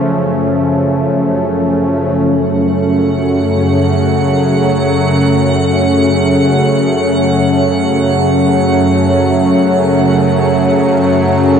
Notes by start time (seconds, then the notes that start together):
Already playing: F#2 C#3 F3 A3 C#4
2.27 F#2 C#3 F#3 F#5